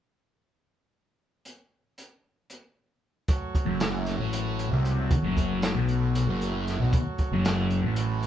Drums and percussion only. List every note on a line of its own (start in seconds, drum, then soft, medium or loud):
1.45 closed hi-hat medium
1.98 closed hi-hat medium
2.50 closed hi-hat medium
3.28 kick medium
3.28 closed hi-hat medium
3.55 kick medium
3.55 closed hi-hat medium
3.80 snare loud
3.80 closed hi-hat loud
4.06 snare soft
4.06 closed hi-hat medium
4.33 closed hi-hat loud
4.59 closed hi-hat medium
4.85 closed hi-hat medium
5.11 kick loud
5.11 closed hi-hat medium
5.37 kick medium
5.37 closed hi-hat medium
5.62 snare loud
5.62 closed hi-hat medium
5.89 closed hi-hat medium
6.15 closed hi-hat loud
6.41 closed hi-hat medium
6.67 snare soft
6.67 closed hi-hat medium
6.93 kick loud
6.93 closed hi-hat medium
7.18 kick medium
7.18 closed hi-hat medium
7.45 snare loud
7.45 closed hi-hat medium
7.70 closed hi-hat medium
7.96 closed hi-hat loud
8.23 closed hi-hat medium